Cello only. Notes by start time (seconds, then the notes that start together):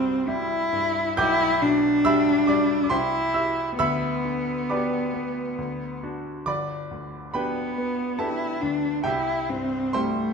Already playing: C4
0.28 E4
1.19 E4
1.62 D4
2.90 E4
3.77 B3
7.34 B3
8.19 E4
8.61 D4
9.04 E4
9.49 C4
9.94 A3